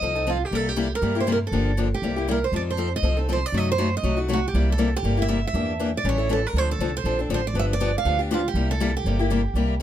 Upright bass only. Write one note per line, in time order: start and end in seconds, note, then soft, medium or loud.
0.01 0.41 C2 medium
0.51 0.92 C2 medium
1.02 1.42 G2 medium
1.52 1.92 G1 medium
2.02 2.42 C2 medium
2.52 2.92 F2 medium
3.02 3.43 C2 medium
3.52 3.93 F#2 medium
4.03 4.43 C2 medium
4.54 4.94 C2 medium
5.03 5.43 G1 medium
5.53 5.94 E2 medium
6.04 6.44 A1 medium
6.53 6.74 D2 medium
6.79 7.00 C2 medium
7.04 7.25 A#1 medium
7.29 7.51 A1 medium
7.54 7.94 G1 medium
8.05 8.45 D2 medium
8.54 8.94 C2 medium
9.04 9.45 G1 medium
9.54 9.82 C2 medium